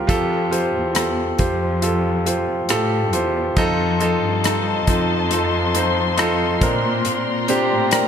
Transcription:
Already playing: F4 G4 A#4 C5
0.07 F2 F4 G4 A4, kick, closed hi-hat
0.51 F4 G4 C5, closed hi-hat
0.74 E2
0.94 F4 G4 A4, cross-stick, closed hi-hat
1.38 F2 F4 G4 C5, kick, closed hi-hat
1.82 F4 G4 A4, closed hi-hat
2.26 F4 G4 C5, closed hi-hat
2.69 A2 F4 G4 A4, cross-stick, closed hi-hat
3.13 E2 F4 G4 C5, closed hi-hat
3.56 F2 F3 D#4 F4 A4 D#5 A5 C6, kick, closed hi-hat
3.99 C4 D#4 F4 A4, closed hi-hat
4.22 G2
4.44 D#4 F4 A4, cross-stick, closed hi-hat
4.87 F2 C4 D#4 F4 A4, kick, closed hi-hat
5.31 D#4 F4 A4, closed hi-hat
5.74 C4 D#4 F4 C5, closed hi-hat
6.17 D#4 F4 A4, cross-stick, closed hi-hat
6.61 A#2 C4 D4 A#4 D5 A#5, kick, closed hi-hat
7.05 A#2, closed hi-hat
7.48 C4 D4 G4, closed hi-hat
7.70 A2
7.91 C4 D4 A#4, cross-stick, closed hi-hat

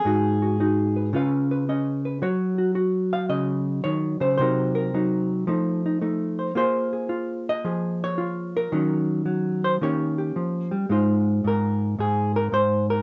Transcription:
Already playing: G#4
0.05 G#2 D#4 F#4
0.42 F#4
0.60 D#4 F#4
0.96 B4
1.13 C#3 C#4 F4 B4 F5
1.51 B4
1.69 C#4 D#5
2.05 B4
2.22 F#3 F#4 C#5
2.58 F#4
2.75 F#4
3.13 F5
3.29 C#3 D#5
3.84 D#3 C#5
4.20 C#3 C5
4.38 C3 F#3 D#4 C5
4.42 A#4
4.75 A#4
4.94 F#3 D#4
5.47 F3 A3 D#4
5.86 D#4
6.01 A3 D#4
6.39 C5
6.55 A#3 F4 G#4 C5
6.93 G#4
7.09 F4
7.49 D#5
7.64 F3 G#4
8.04 C#5
8.18 F4
8.57 A#4
8.72 D#3 F#3 C#4
9.26 F#3
9.64 C5
9.81 D#3 A#3 C#4 G4 C#5
10.18 G4
10.36 F3
10.71 G3
10.89 G#2 G#3 D#4 F4 C5
11.44 G#2 A#4
11.99 G#2 G#4
12.36 A#4
12.52 G#2 C5
12.90 A#4

